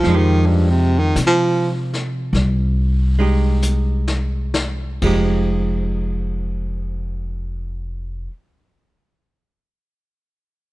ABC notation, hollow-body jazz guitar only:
X:1
M:4/4
L:1/8
Q:"Swing" 1/4=42
K:Fm
V:1 name="Hollow-body jazz guitar"
[F,A,EG]4- [F,A,EG] [A,EG]3 | [F,A,EG]8 |]